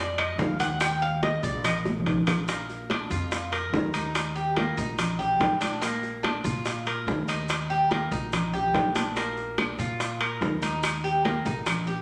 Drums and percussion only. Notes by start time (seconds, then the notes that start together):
0.18 high bongo, high conga, high timbale, claves, maracas
0.39 high bongo, low bongo, high conga, low timbale, maracas
0.60 high conga, high timbale, maracas
0.80 high bongo, high conga, high timbale, claves, maracas
1.02 high conga, maracas
1.23 high bongo, high conga, high timbale, low timbale, maracas
1.43 high bongo, high conga, maracas
1.64 high bongo, high conga, low conga, high timbale, claves, maracas
1.85 high bongo, high conga, maracas
2.00 low conga
2.06 high timbale, low timbale, maracas
2.14 low conga
2.27 low bongo, low conga, high timbale, claves, maracas
2.48 high bongo, high conga, high timbale, maracas
2.69 high bongo, high conga, maracas
2.90 high bongo, high conga, high timbale, low timbale, maracas
3.11 high bongo, high conga, maracas
3.32 high bongo, high conga, high timbale, maracas
3.53 high bongo, high conga, high timbale, maracas
3.74 high bongo, low bongo, high conga, low timbale, maracas
3.94 high conga, high timbale, maracas
4.15 high bongo, high conga, high timbale, maracas
4.36 high conga, maracas
4.57 high bongo, high conga, high timbale, low timbale, maracas
4.77 high bongo, high conga, maracas
4.99 high bongo, high conga, low conga, high timbale, maracas
5.20 high bongo, high conga, low conga, maracas
5.40 high bongo, low bongo, high conga, high timbale, low timbale, maracas
5.61 high bongo, high conga, high timbale, maracas
5.82 high bongo, high conga, high timbale, maracas
6.03 high bongo, high conga, maracas
6.24 high bongo, high conga, high timbale, low timbale, maracas
6.45 high bongo, high conga, maracas
6.65 high bongo, high conga, high timbale, maracas
6.86 high bongo, high conga, high timbale, maracas
7.08 high bongo, low bongo, high conga, low timbale, maracas
7.28 high timbale, maracas
7.49 high bongo, high conga, high timbale, maracas
7.70 high conga, maracas
7.91 high bongo, high conga, high timbale, low timbale, maracas
8.12 high bongo, high conga, maracas
8.33 high bongo, high conga, low conga, high timbale, maracas
8.53 high bongo, high conga, low conga, maracas
8.74 high bongo, low bongo, high conga, high timbale, low timbale, maracas
8.95 high bongo, high conga, high timbale, maracas
9.16 high bongo, high conga, high timbale, maracas
9.37 high bongo, high conga, maracas
9.58 high bongo, high conga, high timbale, low timbale, claves, maracas
9.79 high bongo, high conga, maracas
10.00 high bongo, high conga, high timbale, maracas
10.21 high bongo, high conga, high timbale, claves, maracas
10.41 high bongo, low bongo, high conga, low timbale, maracas
10.62 high conga, high timbale, maracas
10.83 high bongo, high conga, high timbale, claves, maracas
11.05 high conga, maracas
11.25 high bongo, high conga, high timbale, low timbale, maracas
11.46 high bongo, high conga, maracas
11.66 high bongo, high conga, low conga, high timbale, claves, maracas
11.87 high bongo, high conga, maracas